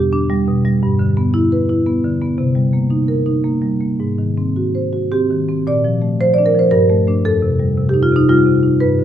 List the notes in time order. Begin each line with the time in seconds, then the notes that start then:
Already playing: E2 G4
0.13 D4
0.30 G3
0.48 B2
0.65 G3
0.83 G2
0.99 D3
1.17 B3
1.34 E4
1.52 B4
1.69 E4
1.86 B3
2.04 D3
2.22 B3
2.38 C3
2.55 G3
2.73 A#3
2.90 D#4
3.08 A#4
3.26 D#4
3.44 A#3
3.62 G3
3.81 A#3
4.00 G#2
4.18 D#3
4.37 C4
4.56 F#4
4.75 C5
4.93 F#4
5.12 C4 G4
5.30 D#3
5.49 C4
5.67 A#2 D5
5.84 F3
6.02 A3
6.21 F3 C5
6.34 D5
6.38 D4
6.46 A#4
6.55 F3
6.59 C5
6.71 G2 A#4
6.90 A3
7.07 A3 D4
7.25 F2 A4
7.42 C3
7.59 G3
7.77 C3
7.89 G4
7.94 D#4
8.03 F4
8.12 C3
8.16 D#4
8.29 G3 F4
8.46 C3
8.63 D#4
8.80 G2 B4
8.99 D3